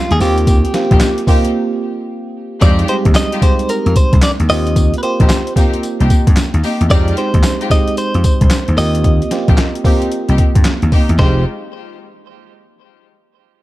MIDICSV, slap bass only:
0, 0, Header, 1, 3, 480
1, 0, Start_track
1, 0, Key_signature, -4, "minor"
1, 0, Tempo, 535714
1, 423, Time_signature, 4, 2, 24, 8
1, 12210, End_track
2, 0, Start_track
2, 0, Title_t, "Slap bass"
2, 0, Program_c, 0, 36
2, 97, Note_on_c, 0, 39, 95
2, 166, Note_off_c, 0, 39, 0
2, 183, Note_on_c, 0, 39, 105
2, 564, Note_off_c, 0, 39, 0
2, 816, Note_on_c, 0, 34, 91
2, 885, Note_off_c, 0, 34, 0
2, 2343, Note_on_c, 0, 41, 104
2, 2534, Note_off_c, 0, 41, 0
2, 2737, Note_on_c, 0, 39, 90
2, 2806, Note_off_c, 0, 39, 0
2, 3459, Note_on_c, 0, 41, 90
2, 3527, Note_off_c, 0, 41, 0
2, 3699, Note_on_c, 0, 36, 86
2, 3767, Note_off_c, 0, 36, 0
2, 3940, Note_on_c, 0, 39, 91
2, 4007, Note_off_c, 0, 39, 0
2, 4025, Note_on_c, 0, 39, 104
2, 4406, Note_off_c, 0, 39, 0
2, 4659, Note_on_c, 0, 34, 79
2, 4727, Note_off_c, 0, 34, 0
2, 5380, Note_on_c, 0, 36, 87
2, 5447, Note_off_c, 0, 36, 0
2, 5619, Note_on_c, 0, 43, 99
2, 5687, Note_off_c, 0, 43, 0
2, 5859, Note_on_c, 0, 39, 96
2, 5926, Note_off_c, 0, 39, 0
2, 6100, Note_on_c, 0, 40, 89
2, 6167, Note_off_c, 0, 40, 0
2, 6185, Note_on_c, 0, 41, 105
2, 6375, Note_off_c, 0, 41, 0
2, 6577, Note_on_c, 0, 39, 84
2, 6646, Note_off_c, 0, 39, 0
2, 7298, Note_on_c, 0, 41, 86
2, 7366, Note_off_c, 0, 41, 0
2, 7537, Note_on_c, 0, 36, 83
2, 7605, Note_off_c, 0, 36, 0
2, 7779, Note_on_c, 0, 39, 84
2, 7847, Note_off_c, 0, 39, 0
2, 7865, Note_on_c, 0, 39, 99
2, 8245, Note_off_c, 0, 39, 0
2, 8497, Note_on_c, 0, 34, 81
2, 8565, Note_off_c, 0, 34, 0
2, 9218, Note_on_c, 0, 36, 94
2, 9286, Note_off_c, 0, 36, 0
2, 9457, Note_on_c, 0, 43, 86
2, 9526, Note_off_c, 0, 43, 0
2, 9699, Note_on_c, 0, 39, 96
2, 9767, Note_off_c, 0, 39, 0
2, 9938, Note_on_c, 0, 40, 94
2, 10006, Note_off_c, 0, 40, 0
2, 10024, Note_on_c, 0, 29, 106
2, 10247, Note_off_c, 0, 29, 0
2, 12210, End_track
3, 0, Start_track
3, 0, Title_t, "Muted slap bass strokes"
3, 3786, Note_on_c, 9, 29, 46
3, 3875, Note_off_c, 9, 29, 0
3, 5705, Note_on_c, 9, 29, 46
3, 5795, Note_off_c, 9, 29, 0
3, 7625, Note_on_c, 9, 29, 46
3, 7715, Note_off_c, 9, 29, 0
3, 9545, Note_on_c, 9, 29, 48
3, 9635, Note_off_c, 9, 29, 0
3, 12210, End_track
0, 0, End_of_file